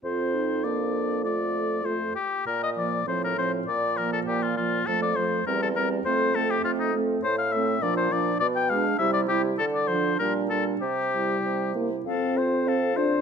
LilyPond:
<<
  \new Staff \with { instrumentName = "Flute" } { \time 2/4 \key bes \major \tempo 4 = 100 r2 | r2 | r2 | r2 |
r2 | r2 | \key f \major r2 | r2 |
r2 | r2 | f''8 c''8 f''8 c''8 | }
  \new Staff \with { instrumentName = "Oboe" } { \time 2/4 \key bes \major c''4 d''4 | d''4 c''8 g'8 | bes'16 ees''16 d''8 c''16 bes'16 c''8 | d''8 bes'16 a'16 g'16 f'16 f'8 |
a'16 d''16 c''8 bes'16 a'16 bes'8 | c''8 a'16 g'16 f'16 ees'16 r8 | \key f \major c''16 f''16 e''8 d''16 c''16 d''8 | d''16 g''16 f''8 e''16 d''16 g'8 |
a'16 d''16 c''8 bes'8 a'8 | g'4. r8 | a'8 c''8 a'8 c''8 | }
  \new Staff \with { instrumentName = "Clarinet" } { \time 2/4 \key bes \major f'8 ees'8 d'4 | f'4 f'8 r8 | r8 bes8 c'8 c'8 | r8 bes4 bes8 |
a8 a8 c'8 c'8 | c'8 c'4 c'8 | \key f \major r8 c'8 d'8 d'8 | r8 d'8 e'8 e'8 |
r8 d'8 d'8 d'8 | r8 e'4 e'8 | c'8 f'8 c'8 f'8 | }
  \new Staff \with { instrumentName = "French horn" } { \clef bass \time 2/4 \key bes \major c'4 bes4 | a4 a8 r8 | r8 f8 f8 f8 | r8 f4 f8 |
f8 f8 g8 g8 | a8 a4 a8 | \key f \major r8 a8 f8 f8 | r8 gis8 g8 g8 |
r8 f8 g8 g8 | r8 g4 bes8 | c'4. d'8 | }
  \new Staff \with { instrumentName = "Bassoon" } { \clef bass \time 2/4 \key bes \major f,2~ | f,4. r8 | bes,4 a,4 | bes,4 bes,4 |
f,4 e,4 | f,4 f,4 | \key f \major a,4 bes,4 | b,4 c4 |
d4 bes,4 | c4 c4 | f,2 | }
>>